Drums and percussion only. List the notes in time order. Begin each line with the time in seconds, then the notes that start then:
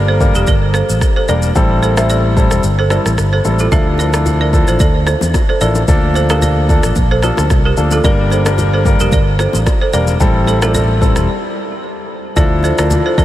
0.21 kick, shaker
0.35 shaker
0.47 kick, shaker
0.74 cross-stick, shaker
0.90 shaker
1.01 kick, cross-stick, shaker
1.28 shaker
1.42 shaker
1.55 kick, shaker
1.83 shaker
1.97 cross-stick, shaker
2.10 shaker
2.37 kick, shaker
2.51 cross-stick, shaker
2.63 shaker
2.90 cross-stick, shaker
3.06 cross-stick, shaker
3.18 cross-stick, shaker
3.45 shaker
3.59 shaker
3.72 kick, low conga, shaker
3.98 low bongo, shaker
4.13 cross-stick, low bongo, shaker
4.26 high bongo, low conga, shaker
4.53 kick, shaker
4.68 shaker
4.79 kick, low conga, shaker
5.07 cross-stick, high bongo, shaker
5.21 high bongo, low bongo, shaker
5.34 kick, cross-stick, high bongo, shaker
5.61 shaker
5.75 low bongo, shaker
5.88 kick, low conga, shaker
6.14 low bongo, shaker
6.30 cross-stick, low bongo, shaker
6.42 high bongo, low conga, shaker
6.69 kick, shaker
6.83 cross-stick, shaker
6.95 kick, low conga, shaker
7.23 cross-stick, high bongo, shaker
7.37 cross-stick, high bongo, low bongo, shaker
7.50 kick, cross-stick, high bongo, shaker
7.77 shaker
7.91 low bongo, shaker
8.04 kick, low conga, shaker
8.30 low bongo, shaker
8.46 cross-stick, low bongo, shaker
8.58 high bongo, low conga, shaker
8.85 kick, shaker
9.00 shaker
9.11 kick, low conga, shaker
9.39 cross-stick, high bongo, shaker
9.53 high bongo, low bongo, shaker
9.66 kick, cross-stick, high bongo, shaker
9.93 shaker
10.07 low bongo, shaker
10.20 kick, low conga, shaker
10.47 low bongo, shaker
10.62 cross-stick, low bongo, shaker
10.74 high bongo, low conga, shaker
11.02 kick, shaker
11.16 cross-stick, shaker
12.36 kick, low conga, shaker
12.63 low bongo, shaker
12.78 cross-stick, shaker
12.91 high bongo, low conga, shaker
13.18 kick, shaker